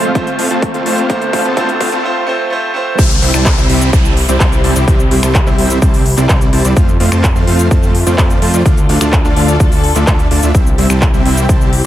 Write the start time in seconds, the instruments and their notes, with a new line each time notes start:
Already playing: analog synth bass F2, supersaw synth A3 C4 F4 C5 F5, grand piano A3 C4 F4 C5, string section A3 C4 F4, riser
0.03 closed hi-hat
0.14 analog synth bass F2, grand piano A3 C4 F4 C5, supersaw synth A3 C4 F4 C5 F5, kick, closed hi-hat
0.27 closed hi-hat
0.39 analog synth bass F2, supersaw synth A3 C4 F4 C5 F5, open hi-hat
0.51 analog synth bass F2, supersaw synth A3 C4 F4 C5 A5, closed hi-hat
0.62 kick, closed hi-hat
0.74 analog synth bass F2, supersaw synth A3 C4 F4 C5 F5, closed hi-hat
0.85 analog synth bass F2, grand piano A3 C4 F4 C5, supersaw synth A3 C4 F4 C5 F5, open hi-hat
0.98 closed hi-hat
1.09 analog synth bass D2, string section D3 D4 F4 A4, grand piano A3 C4 F4 C5, supersaw synth A3 C4 F4 C5 F5, kick, closed hi-hat
1.22 closed hi-hat
1.33 analog synth bass D2, supersaw synth A3 C4 F4 C5 F5, kick, open hi-hat
1.45 analog synth bass D2, supersaw synth A3 C4 F4 C5 A5, closed hi-hat
1.56 analog synth bass D2, grand piano A3 C4 F4 C5, supersaw synth A3 C4 F4 C5 F5, kick, closed hi-hat
1.69 closed hi-hat
1.80 analog synth bass D2, supersaw synth A3 C4 F4 C5 F5, kick, open hi-hat
1.92 analog synth bass D2, supersaw synth A3 C4 F4 C5 A5, closed hi-hat
2.03 grand piano A3 C4 F4 C5
2.27 grand piano A3 C4 F4 C5
2.50 grand piano A3 C4 F4 C5
2.74 grand piano A3 C4 F4 C5
2.99 analog synth bass C2, string section C3 C4 E4 G4, supersaw synth G3 C4 E4 C5 E5, kick, closed hi-hat, crash, downlifter, shaker
3.11 shaker
3.22 analog synth bass C2, supersaw synth G3 C4 E4 C5 E5, open hi-hat
3.34 analog synth bass C2, supersaw synth G3 C4 E4 C5 A5, finger snap, shaker
3.46 kick, clap, closed hi-hat, shaker
3.58 analog synth bass C2, supersaw synth G3 C4 E4 C5 E5, shaker
3.69 analog synth bass C2, supersaw synth G3 C4 E4 C5 E5, open hi-hat
3.81 closed hi-hat, shaker
3.93 analog synth bass C2, supersaw synth G3 C4 E4 C5 A5, kick, closed hi-hat, shaker
4.05 shaker
4.17 open hi-hat
4.29 analog synth bass C2, supersaw synth G3 C4 E4 C5 D5, closed hi-hat, shaker
4.40 analog synth bass C2, supersaw synth G3 C4 E4 C5 D5, kick, clap, closed hi-hat, shaker
4.52 closed hi-hat, shaker
4.64 analog synth bass C2, supersaw synth G3 C4 E4 C5 A5, open hi-hat
4.76 analog synth bass C2, supersaw synth G3 C4 E4 C5 D5, closed hi-hat, shaker
4.88 analog synth bass C2, supersaw synth G3 C4 E4 C5 E5, kick, closed hi-hat, shaker
5.00 shaker
5.11 analog synth bass C2, supersaw synth G3 C4 E4 C5 E5, open hi-hat
5.23 analog synth bass C2, supersaw synth G3 C4 E4 C5 A5, finger snap, shaker
5.35 kick, clap, closed hi-hat, shaker
5.46 analog synth bass C2, supersaw synth G3 C4 E4 C5 E5, clap, shaker
5.58 analog synth bass C2, supersaw synth G3 C4 E4 C5 E5, open hi-hat
5.70 closed hi-hat, shaker
5.82 analog synth bass C2, supersaw synth G3 C4 E4 C5 A5, kick, closed hi-hat, shaker
5.94 open hi-hat, shaker
6.06 open hi-hat
6.17 analog synth bass C2, supersaw synth G3 C4 E4 C5 D5, clap, closed hi-hat, shaker
6.29 analog synth bass C2, supersaw synth G3 C4 E4 C5 D5, kick, clap, closed hi-hat, shaker
6.41 closed hi-hat, shaker
6.53 analog synth bass C2, supersaw synth G3 C4 E4 C5 A5, open hi-hat
6.65 analog synth bass C2, supersaw synth G3 C4 E4 C5 D5, closed hi-hat, shaker
6.77 analog synth bass F2, supersaw synth A3 C4 F4 C5 F5, string section A3 C4 F4, kick, closed hi-hat, shaker
6.89 shaker
7.00 analog synth bass F2, supersaw synth A3 C4 F4 C5 F5, open hi-hat
7.12 analog synth bass F2, supersaw synth A3 C4 F4 C5 A5, finger snap, shaker
7.24 kick, clap, closed hi-hat, shaker
7.36 analog synth bass F2, supersaw synth A3 C4 F4 C5 F5, shaker
7.47 analog synth bass F2, supersaw synth A3 C4 F4 C5 F5, open hi-hat
7.59 closed hi-hat, shaker
7.71 analog synth bass F2, supersaw synth A3 C4 F4 C5 A5, kick, closed hi-hat, shaker
7.83 shaker
7.95 open hi-hat
8.07 analog synth bass F2, supersaw synth A3 C4 F4 C5 D5, closed hi-hat, shaker
8.18 analog synth bass F2, supersaw synth A3 C4 F4 C5 D5, kick, clap, closed hi-hat, shaker
8.30 closed hi-hat, shaker
8.42 analog synth bass F2, supersaw synth A3 C4 F4 C5 A5, open hi-hat
8.54 analog synth bass F2, supersaw synth A3 C4 F4 C5 D5, closed hi-hat, shaker
8.66 analog synth bass D2, string section D3 D4 A4, supersaw synth A3 D4 F4 D5 F5, kick, closed hi-hat, shaker
8.77 closed hi-hat, shaker
8.89 analog synth bass D2, supersaw synth A3 D4 F4 D5 F5, open hi-hat
9.01 analog synth bass D2, supersaw synth A3 D4 F4 D5 A5, finger snap, shaker
9.13 kick, clap, closed hi-hat, shaker
9.25 analog synth bass D2, supersaw synth A3 D4 F4 D5 F5, clap, shaker
9.36 analog synth bass D2, supersaw synth A3 D4 F4 D5 F5, open hi-hat
9.48 closed hi-hat, shaker
9.60 analog synth bass D2, supersaw synth A3 D4 F4 D5 A5, kick, closed hi-hat, shaker
9.72 open hi-hat, shaker
9.84 open hi-hat
9.95 analog synth bass D2, supersaw synth A3 D4 F4 D5 E5, clap, closed hi-hat, shaker
10.07 analog synth bass D2, supersaw synth A3 D4 F4 D5 E5, kick, clap, closed hi-hat, shaker
10.19 closed hi-hat, shaker
10.31 analog synth bass D2, supersaw synth A3 D4 F4 D5 A5, open hi-hat
10.43 analog synth bass D2, supersaw synth A3 D4 F4 D5 E5, closed hi-hat, shaker
10.55 analog synth bass C2, string section C3 C4 E4 G4, supersaw synth G3 C4 E4 C5 E5, kick, closed hi-hat, shaker
10.67 shaker
10.78 analog synth bass C2, supersaw synth G3 C4 E4 C5 E5, open hi-hat
10.90 analog synth bass C2, supersaw synth G3 C4 E4 C5 A5, finger snap, shaker
11.02 kick, clap, closed hi-hat, shaker
11.14 analog synth bass C2, supersaw synth G3 C4 E4 C5 E5, shaker
11.25 analog synth bass C2, supersaw synth G3 C4 E4 C5 E5, open hi-hat
11.37 closed hi-hat, shaker
11.49 analog synth bass C2, supersaw synth G3 C4 E4 C5 A5, kick, closed hi-hat, shaker
11.61 shaker
11.73 open hi-hat